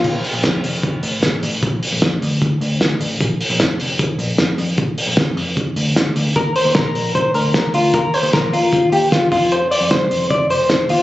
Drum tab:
CC |x-------|--------|--------|--------|
HH |-oxoxoxo|xoxoxoxo|xoxoxoxo|xoxoxoxo|
SD |--o---o-|--o---o-|--o---o-|--o---o-|
BD |o-o-o-o-|o-o-o-o-|o-o-o-o-|o-o-o-o-|

CC |--------|--------|--------|
HH |xoxoxoxo|xoxoxoxo|xoxoxoxo|
SD |--o---o-|--o---o-|--o---o-|
BD |o-o-o-o-|o-o-o-oo|--o-o-o-|